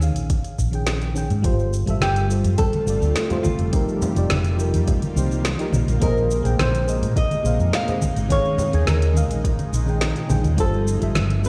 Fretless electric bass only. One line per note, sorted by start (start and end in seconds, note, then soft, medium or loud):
0.00 0.16 D#2 medium
0.16 0.28 A#1 medium
0.59 1.32 A#1 medium
1.30 1.42 G#2 medium
1.44 1.83 G1 loud
1.87 1.99 G1 medium
2.01 2.46 G1 loud
2.44 2.56 G2 medium
2.87 2.99 G1 medium
3.01 3.13 D2 medium
3.58 3.70 F1 medium
4.17 4.28 F1 medium
4.30 4.75 F1 loud
4.73 4.85 F2 medium
5.16 5.55 C2 medium
5.73 5.85 A#1 medium
5.88 5.99 A#1 loud
6.02 6.41 A#1 loud
6.45 6.56 A#1 medium
6.59 7.03 A#1 loud
7.02 7.13 A#2 medium
7.44 7.56 A#1 medium
7.59 7.70 F2 medium
8.17 8.28 G#1 medium
8.74 8.85 D#2 medium
8.87 9.30 D#2 medium
9.30 9.42 A#1 medium
9.72 10.12 A#1 medium
10.30 10.42 A#1 medium
10.44 10.56 D#2 medium
10.58 10.98 G1 loud
11.02 11.13 G1 medium
11.15 11.49 G1 medium